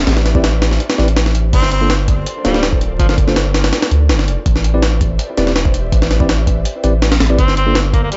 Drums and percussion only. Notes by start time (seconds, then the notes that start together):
0.07 snare, closed hi-hat
0.17 snare
0.26 snare, closed hi-hat
0.35 kick
0.44 snare, closed hi-hat
0.62 snare, closed hi-hat
0.71 snare
0.80 closed hi-hat
0.90 snare, closed hi-hat
0.98 snare
1.08 closed hi-hat
1.17 snare, closed hi-hat
1.26 snare
1.35 closed hi-hat
1.53 kick, closed hi-hat, crash
1.63 snare
1.71 closed hi-hat
1.90 snare, closed hi-hat
2.08 kick, closed hi-hat
2.26 closed hi-hat
2.45 snare, closed hi-hat
2.54 snare
2.63 snare, closed hi-hat
2.73 kick
2.81 closed hi-hat
3.00 kick, closed hi-hat
3.09 snare
3.18 kick, closed hi-hat
3.28 snare
3.36 snare, closed hi-hat
3.54 snare, closed hi-hat
3.64 snare, closed hi-hat
3.73 snare, closed hi-hat
3.82 snare, closed hi-hat
3.91 closed hi-hat
4.09 snare, closed hi-hat
4.19 snare
4.28 closed hi-hat
4.46 kick, closed hi-hat
4.56 snare
4.64 closed hi-hat
4.83 snare, closed hi-hat
5.01 kick, closed hi-hat
5.19 closed hi-hat
5.37 snare, closed hi-hat
5.47 snare
5.56 snare, closed hi-hat
5.65 kick
5.74 closed hi-hat
5.92 kick, closed hi-hat
6.02 snare
6.11 snare, closed hi-hat
6.20 kick
6.29 snare, closed hi-hat
6.47 kick, closed hi-hat
6.65 closed hi-hat
6.84 closed hi-hat
7.02 snare, closed hi-hat
7.12 snare, closed hi-hat
7.20 snare, closed hi-hat
7.38 kick, closed hi-hat
7.48 snare
7.57 closed hi-hat
7.75 snare, closed hi-hat
7.94 kick, closed hi-hat
8.12 closed hi-hat